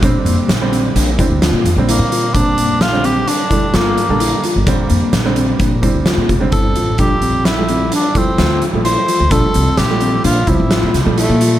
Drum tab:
HH |xxxxxxxxxx|xxxxxxxxxx|xxxxxxxxxx|xxxxxxxxxx|
SD |--o---o---|--o---o---|--o---o---|--o---o---|
BD |o----o----|o----o----|o---oo-oo-|o----o----|

HH |xxxxxxxxxx|
SD |--o---oo--|
BD |o----o----|